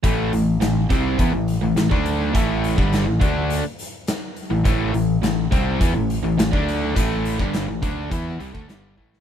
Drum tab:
HH |x-x-x-x-x-x-x-x-|x-x-x-x-x-x-x-x-|x-x-x-x-x-x-x-x-|x-x-x-x-x-x-x---|
SD |----o-------o---|----o-------o---|----o-------o-o-|----o-------o--o|
BD |o-----o-o----o--|o--o--o---------|o-----o-o----o--|o--o--o-o--o--o-|